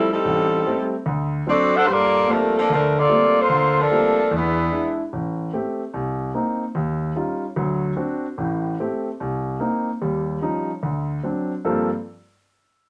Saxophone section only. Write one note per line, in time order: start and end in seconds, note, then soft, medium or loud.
0.00 0.11 E4 medium
0.10 0.88 G3 medium
0.10 0.88 C4 medium
0.10 0.88 D#4 medium
0.10 0.88 A4 medium
1.49 1.72 C4 medium
1.49 1.72 F#4 medium
1.49 1.72 A4 medium
1.49 1.72 D5 loud
1.75 1.84 D4 loud
1.75 1.84 A4 loud
1.75 1.84 C5 loud
1.75 1.84 F#5 loud
1.85 1.89 C5 medium
1.90 2.29 A#3 loud
1.90 2.30 F4 medium
1.90 2.29 A4 medium
1.90 2.29 D5 loud
2.31 2.56 F3 medium
2.31 2.56 A3 medium
2.31 2.56 D4 medium
2.31 2.56 A#4 loud
2.57 2.69 F3 medium
2.57 2.69 A#3 medium
2.57 2.69 D4 medium
2.57 2.69 A4 medium
2.72 2.95 F3 medium
2.72 2.95 A3 medium
2.72 2.95 D4 medium
2.72 2.95 A#4 loud
2.98 3.37 A#3 medium
2.98 3.37 F4 medium
2.98 3.37 A4 medium
2.98 3.37 D5 loud
3.38 3.78 A#3 medium
3.38 3.78 F4 medium
3.38 3.78 A4 medium
3.38 3.78 C5 loud
3.79 4.33 F3 medium
3.79 4.33 D4 medium
3.79 4.33 A4 medium
3.79 4.33 A#4 loud
4.34 4.96 E3 medium
4.34 4.96 B3 medium
4.34 4.96 D4 medium
4.34 4.96 G#4 medium